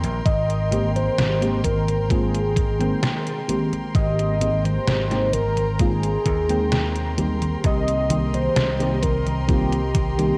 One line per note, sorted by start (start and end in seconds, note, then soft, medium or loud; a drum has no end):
0.00 0.20 A#1 medium
0.00 0.22 D#3 medium
0.00 0.23 G3 medium
0.00 0.23 A#3 medium
0.00 0.23 C4 medium
0.00 0.23 A#4 medium
0.00 7.60 A#4 medium
0.00 0.22 D#5 medium
0.00 7.60 G5 medium
0.00 7.60 C6 medium
0.00 closed hi-hat soft
0.25 1.08 G#1 medium
0.25 0.92 D#5 loud
0.25 kick loud
0.25 closed hi-hat medium
0.25 high conga soft
0.50 closed hi-hat soft
0.71 1.36 D#3 medium
0.71 1.36 G#3 medium
0.71 1.36 A#3 medium
0.71 1.36 C4 medium
0.71 1.36 G4 medium
0.71 closed hi-hat medium
0.71 high conga medium
0.96 1.60 C5 loud
0.96 closed hi-hat soft
0.96 high conga soft
1.18 2.93 G#1 medium
1.18 snare loud
1.18 closed hi-hat medium
1.18 high conga soft
1.41 1.60 D#3 medium
1.41 1.60 G#3 medium
1.41 1.61 A#3 medium
1.41 1.61 C4 medium
1.41 1.61 G4 loud
1.41 closed hi-hat soft
1.64 2.13 A#4 loud
1.64 kick medium
1.64 closed hi-hat medium
1.64 high conga medium
1.88 closed hi-hat soft
1.88 high conga soft
2.10 2.41 D#3 medium
2.10 2.42 G#3 medium
2.10 2.42 A#3 medium
2.10 2.42 C4 medium
2.10 2.42 F4 medium
2.10 3.49 G#4 medium
2.10 kick loud
2.10 closed hi-hat medium
2.10 high conga soft
2.35 closed hi-hat soft
2.56 kick loud
2.56 closed hi-hat medium
2.56 high conga medium
2.79 3.43 D#3 medium
2.79 3.43 G#3 medium
2.79 3.43 A#3 medium
2.79 3.43 C4 medium
2.79 3.44 G5 medium
2.79 closed hi-hat soft
2.79 high conga soft
3.03 snare loud
3.03 closed hi-hat medium
3.03 high conga soft
3.27 closed hi-hat soft
3.48 4.35 D#3 medium
3.48 4.36 G#3 medium
3.48 4.36 A#3 medium
3.48 4.36 C4 medium
3.48 4.36 G4 medium
3.48 closed hi-hat medium
3.48 high conga medium
3.73 closed hi-hat soft
3.73 high conga soft
3.95 4.78 G#1 loud
3.95 4.66 D#5 loud
3.95 7.61 A#5 medium
3.95 kick loud
3.95 closed hi-hat medium
3.95 high conga soft
4.19 closed hi-hat soft
4.40 5.05 D#3 medium
4.40 5.05 G#3 medium
4.40 5.05 A#3 medium
4.40 5.05 C4 medium
4.40 5.06 G4 medium
4.40 closed hi-hat medium
4.40 high conga medium
4.64 5.35 C5 loud
4.64 closed hi-hat soft
4.64 high conga soft
4.87 6.16 G#1 medium
4.87 snare loud
4.87 closed hi-hat medium
4.87 high conga soft
5.10 5.29 D#3 medium
5.10 5.30 G#3 medium
5.10 5.30 A#3 medium
5.10 5.30 C4 medium
5.10 5.30 G4 loud
5.10 snare soft
5.10 closed hi-hat soft
5.33 5.81 A#4 medium
5.33 closed hi-hat medium
5.33 high conga medium
5.57 closed hi-hat soft
5.57 high conga soft
5.79 6.11 D#3 medium
5.79 6.11 G#3 medium
5.79 6.11 A#3 medium
5.79 6.11 C4 medium
5.79 6.12 F4 medium
5.79 7.18 G#4 medium
5.79 kick loud
5.79 closed hi-hat medium
5.79 high conga soft
6.03 closed hi-hat soft
6.26 7.55 D#2 medium
6.26 kick medium
6.26 closed hi-hat medium
6.26 high conga medium
6.49 7.12 D#3 medium
6.49 7.12 G#3 medium
6.49 7.13 A#3 medium
6.49 7.13 C4 medium
6.49 7.13 G5 loud
6.49 closed hi-hat soft
6.49 high conga soft
6.72 snare loud
6.72 closed hi-hat medium
6.72 high conga soft
6.96 closed hi-hat soft
7.17 8.05 D#3 medium
7.17 8.05 G3 medium
7.17 8.05 A#3 medium
7.17 8.05 C4 medium
7.17 8.05 G4 medium
7.17 closed hi-hat medium
7.17 high conga medium
7.42 closed hi-hat soft
7.42 high conga soft
7.64 8.47 C2 loud
7.64 10.38 A#4 medium
7.64 10.38 D#5 medium
7.64 8.36 D#5 loud
7.64 10.38 G5 medium
7.64 10.38 C6 medium
7.64 kick loud
7.64 closed hi-hat medium
7.64 high conga soft
7.88 closed hi-hat soft
8.09 8.74 D#3 medium
8.09 8.74 G3 medium
8.09 8.75 A#3 medium
8.09 8.75 C4 medium
8.09 8.75 G4 medium
8.09 closed hi-hat medium
8.09 high conga medium
8.34 9.04 C5 loud
8.34 closed hi-hat soft
8.34 high conga soft
8.56 10.32 C2 medium
8.56 snare loud
8.56 closed hi-hat medium
8.56 high conga soft
8.79 8.99 D#3 medium
8.79 8.99 G3 medium
8.79 8.99 A#3 medium
8.79 8.99 C4 medium
8.79 8.99 G4 loud
8.79 closed hi-hat soft
9.03 9.50 A#4 loud
9.03 kick medium
9.03 closed hi-hat medium
9.03 high conga medium
9.27 closed hi-hat soft
9.27 high conga soft
9.48 9.80 D#3 medium
9.48 9.80 G3 medium
9.48 9.80 A#3 medium
9.48 9.80 C4 medium
9.48 9.81 F4 medium
9.48 10.38 G4 medium
9.48 kick loud
9.48 closed hi-hat medium
9.48 high conga soft
9.72 closed hi-hat soft
9.95 kick medium
9.95 closed hi-hat medium
9.95 high conga medium
10.18 10.38 D#3 medium
10.18 10.38 G3 medium
10.18 10.38 A#3 medium
10.18 10.38 C4 medium
10.18 10.38 G4 loud
10.18 closed hi-hat soft
10.18 high conga soft